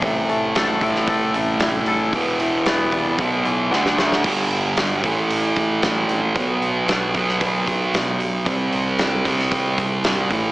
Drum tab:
CC |----------------|----------------|x---------------|----------------|
HH |o-o-o-o-o-o-o-o-|o-o-o-o-o-o-----|--o-o-o-o-o-o-o-|o-o-o-o-o-o-o-o-|
SD |----o--o----o---|----o-------oooo|----o-------o---|----o--o----o---|
BD |o-----o-o-------|o-----o-o-------|o-----o---o-----|o-----o-o-o-----|

CC |----------------|
HH |o-o-o-o-o-o-o-o-|
SD |----o--o----o---|
BD |o-----o-o-o---o-|